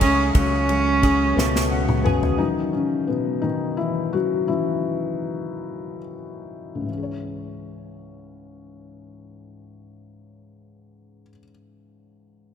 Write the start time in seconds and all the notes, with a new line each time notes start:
Already playing: C#2 C#3 F#3 G#3 A3 C#4
0.01 C#3 C#4 G#4, kick, ride
0.35 C#2 C#3 F#3 C#4, kick, ride
0.69 G#3 C#4, ride
1.02 C#3 C#4 G#4, kick, ride
1.35 C#2 B2 G#3 A3 B3, snare
1.56 snare
1.70 C#4 F#5
1.89 mid tom
2.03 B2 C#3 B3 G#4 G#5, mid tom
2.23 floor tom
2.38 C#3 D#3 E3 F#3 D#4
2.73 C#3 C#4
3.07 B2 B3
3.42 D#3 D#4
3.77 E3 E4
4.13 C#3 E3 F#3 F#4
4.48 C#3 E3 F#3 E4
6.75 C#2
6.81 G#2
6.86 E3
6.92 C#4
6.97 G#4
7.03 C#5